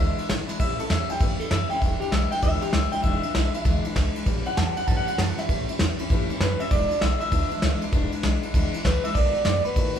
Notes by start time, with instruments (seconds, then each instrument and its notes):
Already playing: clean electric guitar E5
0.00 upright bass D2, steel-string acoustic guitar E2 B2 E3 G#3 D4 E4
0.18 steel-string acoustic guitar E3 G#3 D4 E4, muted upright bass stroke, ride
0.29 upright bass G#1, steel-string acoustic guitar E3 G#3 D4 E4, snare, ride
0.48 steel-string acoustic guitar E3 G#3 D4 E4, muted upright bass stroke, snare, ride
0.59 upright bass A1, steel-string acoustic guitar A2 E3 G3 C#4 E4, clean electric guitar E5, kick, ride
0.79 steel-string acoustic guitar G3 C#4 E4, clean electric guitar A4, muted upright bass stroke, ride
0.90 upright bass E2, steel-string acoustic guitar E3 G3 C#4 E4, clean electric guitar E5, snare, ride
1.09 steel-string acoustic guitar G3 C#4 E4, clean electric guitar G5, muted upright bass stroke, ride
1.20 upright bass G2, steel-string acoustic guitar A2 E3 G3 C#4 E4, clean electric guitar E5, kick, ride
1.40 steel-string acoustic guitar C#4 E4, clean electric guitar A4, muted upright bass stroke, ride
1.44 steel-string acoustic guitar G3
1.51 upright bass F#2, steel-string acoustic guitar E3 G3 C#4 E4, clean electric guitar E5, snare, ride
1.70 steel-string acoustic guitar E4, clean electric guitar G5, muted upright bass stroke, ride
1.74 steel-string acoustic guitar G3 C#4
1.80 upright bass E1, steel-string acoustic guitar E2 B2 E3, clean electric guitar E5, kick, ride
1.85 steel-string acoustic guitar G#3 D4 E4
2.00 steel-string acoustic guitar D4 E4, clean electric guitar G4, muted upright bass stroke, ride
2.04 steel-string acoustic guitar E3 G#3
2.11 upright bass B1, steel-string acoustic guitar E3 G#3 D4, clean electric guitar E5, snare, ride
2.16 steel-string acoustic guitar E4
2.32 steel-string acoustic guitar E3 G#3 D4 E4, clean electric guitar G5, ride
2.42 upright bass D2, steel-string acoustic guitar E2 B2 E3 G#3 D4 E4, clean electric guitar E5, kick, ride
2.61 steel-string acoustic guitar E3 G#3 D4 E4, clean electric guitar G4, muted upright bass stroke, ride
2.73 upright bass C#2, steel-string acoustic guitar E3 G#3 D4 E4, clean electric guitar E5, snare, ride
2.92 steel-string acoustic guitar E3 G#3 D4 E4, clean electric guitar G5, muted upright bass stroke, ride
3.03 upright bass E1, steel-string acoustic guitar E2 B2 E3 G#3 D4 E4, clean electric guitar E5, kick, ride
3.23 steel-string acoustic guitar E3 G#3 D4 E4, muted upright bass stroke, ride
3.35 upright bass B1, steel-string acoustic guitar E3 G#3 D4 E4, snare, ride
3.54 steel-string acoustic guitar E3 G#3 D4 E4, ride
3.65 upright bass D2, steel-string acoustic guitar E2 B2 E3 G#3 D4 E4, kick, ride
3.84 steel-string acoustic guitar E3 G#3 D4 E4, ride
3.95 upright bass C#2, steel-string acoustic guitar E3 G#3 D4 E4, kick, snare, ride
4.15 steel-string acoustic guitar E3 G#3 D4 E4, muted upright bass stroke, ride
4.26 upright bass A1, steel-string acoustic guitar A2 E3 G3 C#4 E4, kick, ride
4.46 steel-string acoustic guitar G3 C#4 E4, clean electric guitar F#5, muted upright bass stroke, ride
4.57 upright bass E2, steel-string acoustic guitar E3 G3 C#4 E4, clean electric guitar A5, snare, ride
4.67 clean electric guitar F#5
4.77 steel-string acoustic guitar G3 C#4 E4, clean electric guitar F#5, muted upright bass stroke, ride
4.87 upright bass G2, steel-string acoustic guitar A2 E3 G3 C#4 E4, clean electric guitar A5, kick, ride
4.97 clean electric guitar F#5
5.07 steel-string acoustic guitar G3 C#4 E4, clean electric guitar F#5, muted upright bass stroke, ride
5.18 upright bass F#2, steel-string acoustic guitar E3 G3 C#4 E4, clean electric guitar A5, snare, ride
5.29 clean electric guitar F#5
5.38 steel-string acoustic guitar G3 C#4 E4, clean electric guitar E5, muted upright bass stroke, snare, ride
5.49 upright bass A1, steel-string acoustic guitar A2 E3 G3 C#4 E4, kick, ride
5.68 steel-string acoustic guitar G3 C#4 E4, muted upright bass stroke, ride
5.79 upright bass E2, steel-string acoustic guitar E3 G3 C#4 E4, snare, ride
5.99 steel-string acoustic guitar G3 C#4 E4, muted upright bass stroke, ride
6.10 upright bass G2, steel-string acoustic guitar A2 E3 G3 C#4 E4, kick, ride
6.29 steel-string acoustic guitar G3 C#4 E4, muted upright bass stroke, ride
6.40 upright bass F#2, steel-string acoustic guitar E3 G3 C#4 E4, clean electric guitar B4, snare, ride
6.60 steel-string acoustic guitar G3 C#4 E4, clean electric guitar E5, muted upright bass stroke, ride
6.71 upright bass E1, steel-string acoustic guitar E2 B2 E3 G#3 D4 E4, clean electric guitar D5, kick, ride
6.91 steel-string acoustic guitar E3 G#3 D4 E4, muted upright bass stroke, ride
7.01 upright bass B1, steel-string acoustic guitar E3 G#3 D4 E4, clean electric guitar E5, snare, ride
7.20 steel-string acoustic guitar E3 G#3 D4 E4, clean electric guitar E5, ride
7.32 upright bass D2, steel-string acoustic guitar E2 B2 E3 G#3 D4 E4, kick, ride
7.51 steel-string acoustic guitar E3 G#3 D4 E4, muted upright bass stroke, ride
7.62 upright bass C#2, steel-string acoustic guitar E3 G#3 D4 E4, snare, ride
7.82 steel-string acoustic guitar E3 G#3 D4 E4, muted upright bass stroke, ride
7.92 upright bass E1, steel-string acoustic guitar E2 B2 E3 G#3 D4 E4, kick, ride
8.12 steel-string acoustic guitar E3 G#3 D4 E4, ride
8.23 upright bass B1, steel-string acoustic guitar E3 G#3 D4 E4, snare, ride
8.43 steel-string acoustic guitar E3 G#3 D4 E4, ride
8.54 upright bass D2, steel-string acoustic guitar E2 B2 E3 G#3 D4 E4, kick, ride
8.74 steel-string acoustic guitar E3 G#3 D4 E4, ride
8.84 upright bass C#2, steel-string acoustic guitar E3 G#3 D4 E4, clean electric guitar B4, kick, snare, ride
9.04 steel-string acoustic guitar E3 G#3 D4 E4, clean electric guitar E5, muted upright bass stroke, ride
9.14 upright bass B1, steel-string acoustic guitar B2 D#3 A3 B3 F#4, clean electric guitar D5, kick, ride
9.34 steel-string acoustic guitar A3 B3 F#4, muted upright bass stroke, ride
9.45 upright bass F#2, steel-string acoustic guitar D#3 A3 B3 F#4, clean electric guitar D5, snare, ride
9.65 steel-string acoustic guitar A3 B3 F#4, clean electric guitar B4, muted upright bass stroke, ride
9.76 upright bass A2, steel-string acoustic guitar B2 D#3 A3 B3 F#4, kick, ride
9.96 steel-string acoustic guitar F#4, muted upright bass stroke, ride